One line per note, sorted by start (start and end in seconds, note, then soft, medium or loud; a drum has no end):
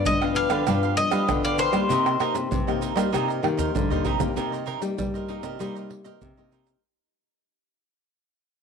0.00 0.16 F3 medium
0.00 0.17 B3 medium
0.00 0.17 D4 medium
0.05 0.45 G2 medium
0.05 0.65 D3 medium
0.05 0.35 D#5 medium
0.05 pandeiro medium
0.05 maracas medium
0.05 surdo loud
0.21 0.47 F3 medium
0.21 0.48 B3 medium
0.21 0.48 D4 medium
0.21 0.35 G4 soft
0.21 0.36 B4 soft
0.21 0.35 F5 soft
0.21 pandeiro soft
0.21 tamborim medium
0.21 maracas soft
0.35 0.50 D4 medium
0.35 0.51 G4 medium
0.35 0.50 B4 medium
0.35 0.94 F5 medium
0.35 0.49 F5 medium
0.35 pandeiro medium
0.50 0.64 D3 loud
0.50 0.62 F3 medium
0.50 0.62 B3 medium
0.50 0.62 D4 medium
0.50 0.66 G4 medium
0.50 0.66 B4 medium
0.50 0.65 F5 medium
0.50 pandeiro medium
0.50 tamborim medium
0.50 maracas medium
0.67 0.93 G2 loud
0.67 1.26 G2 medium
0.67 1.24 F3 medium
0.67 1.24 B3 medium
0.67 0.81 D4 medium
0.67 1.24 D4 medium
0.67 0.82 G4 medium
0.67 0.82 B4 medium
0.67 0.82 F5 medium
0.67 pandeiro medium
0.67 tamborim medium
0.67 maracas medium
0.67 surdo medium
0.83 0.96 G4 soft
0.83 0.96 B4 soft
0.83 0.97 F5 soft
0.83 pandeiro soft
0.83 maracas soft
0.97 1.44 D#5 loud
0.97 muted cavaquinho stroke soft
0.97 pandeiro medium
1.11 1.26 G3 medium
1.11 1.43 G4 medium
1.11 1.43 B4 medium
1.11 1.42 F5 medium
1.11 pandeiro medium
1.11 tamborim medium
1.11 maracas medium
1.28 1.68 D3 medium
1.28 1.87 D3 medium
1.28 1.70 F3 medium
1.28 1.70 B3 medium
1.28 1.70 D4 medium
1.28 pandeiro medium
1.28 tamborim medium
1.28 maracas medium
1.28 surdo loud
1.44 1.58 G4 soft
1.44 1.58 B4 soft
1.44 1.59 D5 medium
1.44 1.58 F5 medium
1.44 pandeiro soft
1.44 maracas soft
1.58 1.73 D4 medium
1.58 1.73 G4 medium
1.58 1.73 B4 medium
1.58 3.71 C5 medium
1.58 1.72 F5 medium
1.58 pandeiro medium
1.58 maracas medium
1.72 1.87 G3 medium
1.72 2.15 A#3 medium
1.72 2.15 D#4 medium
1.72 2.16 G4 medium
1.72 1.89 G4 soft
1.72 1.89 B4 soft
1.72 1.88 F5 soft
1.72 pandeiro medium
1.72 tamborim medium
1.72 maracas medium
1.89 2.16 C3 loud
1.89 2.48 C3 medium
1.89 2.04 D#4 medium
1.89 2.05 A#4 medium
1.89 2.05 C5 medium
1.89 2.05 D#5 medium
1.89 pandeiro medium
1.89 maracas medium
1.89 surdo medium
2.06 2.19 A#4 soft
2.06 2.20 C5 soft
2.06 2.20 D#5 soft
2.06 pandeiro soft
2.06 tamborim medium
2.06 maracas soft
2.20 2.62 A#3 medium
2.20 2.33 D#4 medium
2.20 2.62 D#4 medium
2.20 2.62 G4 medium
2.20 2.34 A#4 medium
2.20 2.34 C5 medium
2.20 2.34 D#5 medium
2.20 pandeiro medium
2.20 tamborim medium
2.34 2.48 C3 medium
2.34 muted cavaquinho stroke soft
2.34 pandeiro medium
2.34 maracas medium
2.51 3.10 G2 medium
2.51 2.91 C3 medium
2.51 pandeiro medium
2.51 maracas medium
2.51 surdo loud
2.67 2.93 A#3 medium
2.67 2.93 D#4 medium
2.67 2.94 G4 medium
2.67 2.81 A#4 soft
2.67 2.81 C5 soft
2.67 2.81 D#5 soft
2.67 pandeiro soft
2.67 tamborim medium
2.67 maracas soft
2.81 2.96 D#4 soft
2.81 2.96 A#4 medium
2.81 2.95 C5 medium
2.81 2.94 D#5 medium
2.81 pandeiro medium
2.81 maracas medium
2.96 3.10 G3 medium
2.96 3.08 A#3 medium
2.96 3.08 D#4 medium
2.96 3.08 G4 medium
2.96 3.12 A#4 medium
2.96 3.11 C5 medium
2.96 3.11 D#5 medium
2.96 pandeiro medium
2.96 tamborim medium
2.96 maracas medium
3.12 3.39 C3 loud
3.12 3.72 C3 medium
3.12 3.39 A#3 medium
3.12 3.27 D#4 medium
3.12 3.39 D#4 medium
3.12 3.40 G4 medium
3.12 3.27 A#4 medium
3.12 3.28 C5 medium
3.12 3.27 D#5 medium
3.12 pandeiro medium
3.12 tamborim medium
3.12 maracas medium
3.12 surdo medium
3.28 3.42 A#4 soft
3.28 3.42 C5 soft
3.28 3.43 D#5 soft
3.28 pandeiro soft
3.28 maracas soft
3.43 3.71 D#3 medium
3.43 3.85 A#3 medium
3.43 3.85 D#4 medium
3.43 3.85 G4 medium
3.43 muted cavaquinho stroke soft
3.43 pandeiro medium
3.43 tamborim medium
3.57 3.89 A#4 medium
3.57 3.89 C5 medium
3.57 3.88 D#5 medium
3.57 surdo medium
3.57 pandeiro medium
3.57 maracas medium
3.75 4.33 G2 medium
3.75 4.03 D3 medium
3.75 pandeiro medium
3.75 maracas medium
3.75 surdo loud
3.90 4.16 A#3 medium
3.90 4.17 D#4 medium
3.90 4.17 G4 medium
3.90 4.04 A#4 soft
3.90 4.05 C5 soft
3.90 4.04 D#5 medium
3.90 surdo medium
3.90 pandeiro soft
3.90 maracas soft
4.05 4.33 C3 medium
4.05 4.19 D#4 medium
4.05 4.20 A#4 medium
4.05 4.19 C5 medium
4.05 4.18 D#5 medium
4.05 pandeiro medium
4.05 surdo medium
4.19 4.62 A#3 medium
4.19 4.62 D#4 medium
4.19 4.62 G4 medium
4.19 4.35 A#4 soft
4.19 4.35 C5 soft
4.19 4.34 D#5 soft
4.19 pandeiro medium
4.19 maracas medium
4.19 surdo medium
4.36 4.76 C3 medium
4.36 4.95 C3 medium
4.36 4.51 D#4 medium
4.36 4.51 A#4 medium
4.36 4.51 C5 medium
4.36 4.51 D#5 medium
4.36 pandeiro medium
4.36 maracas medium
4.36 surdo soft
4.52 4.65 A#4 soft
4.52 4.66 C5 soft
4.52 4.66 D#5 soft
4.52 pandeiro soft
4.52 maracas soft
4.66 4.80 D#4 medium
4.66 4.80 A#4 medium
4.66 4.80 C5 medium
4.66 4.81 D#5 medium
4.66 pandeiro medium
4.81 4.95 G3 medium
4.81 5.24 A#3 medium
4.81 5.24 D#4 medium
4.81 5.24 G4 medium
4.81 muted cavaquinho stroke soft
4.81 pandeiro medium
4.81 maracas medium
4.98 5.57 G2 medium
4.98 5.38 G3 medium
4.98 pandeiro medium
4.98 maracas medium
4.98 surdo medium
5.14 5.28 A#4 soft
5.14 5.29 C5 soft
5.14 5.28 D#5 soft
5.14 pandeiro soft
5.14 maracas soft
5.28 5.55 A#3 soft
5.28 5.43 D#4 soft
5.28 5.55 D#4 medium
5.28 5.55 G4 medium
5.28 5.43 A#4 soft
5.28 5.43 C5 medium
5.28 5.42 D#5 medium
5.28 pandeiro soft
5.43 5.57 C3 medium
5.43 5.59 A#4 medium
5.43 5.59 C5 medium
5.43 5.58 D#5 medium
5.43 pandeiro medium
5.43 maracas medium
5.59 6.19 C3 medium
5.59 6.12 G3 medium
5.59 6.02 A#3 medium
5.59 5.74 D#4 medium
5.59 6.02 D#4 medium
5.59 6.02 G4 medium
5.59 5.74 A#4 medium
5.59 5.74 C5 medium
5.59 5.74 D#5 medium
5.59 pandeiro medium
5.59 maracas medium
5.59 surdo soft
5.75 5.89 A#4 soft
5.75 5.90 C5 soft
5.75 5.90 D#5 soft
5.75 pandeiro soft
5.75 maracas soft
5.90 muted cavaquinho stroke soft
5.90 pandeiro medium
6.04 6.32 A#3 medium
6.04 6.32 D#4 medium
6.04 6.32 G4 medium
6.04 6.36 A#4 medium
6.04 6.36 C5 medium
6.04 6.35 D#5 medium
6.04 pandeiro medium
6.04 maracas medium
6.22 6.81 G2 soft
6.22 6.74 C3 medium
6.22 pandeiro medium
6.22 maracas medium
6.22 surdo loud
6.37 6.79 A#3 soft
6.37 6.79 D#4 medium
6.37 6.79 G4 medium
6.37 6.51 A#4 soft
6.37 6.52 C5 soft
6.37 6.52 D#5 soft
6.37 pandeiro soft
6.37 maracas soft
6.52 6.66 D#4 medium
6.52 6.67 A#4 medium
6.52 6.67 C5 medium
6.52 6.65 D#5 medium
6.52 pandeiro soft
6.52 maracas medium
6.67 6.83 A#4 soft
6.67 6.82 C5 soft
6.67 6.82 D#5 soft
6.67 pandeiro medium
6.67 maracas medium